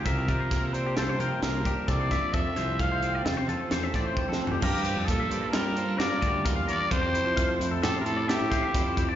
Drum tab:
CC |------------------------------|------------------------------|x-----------------------------|------------------------------|
HH |x--x--x--x--x--x--x--x--x--x--|x--x--x--x--x--x--x--x--------|---x--x--x--x--x--x--x--x--x--|x--x--x--x--x--x--x--x--x--x--|
SD |------o-----o-----o-----o--o--|---o--------o-----o--o----o---|------o-----o-----o-----------|------------o-----o--o--o-----|
FT |------------------------------|----------------------------o-|------------------------------|------------------------------|
BD |o--o--o--------------o--o--o--|o-----o--------------o--o-----|o-----o--------------o--o-----|o-----o--------------o--o--o--|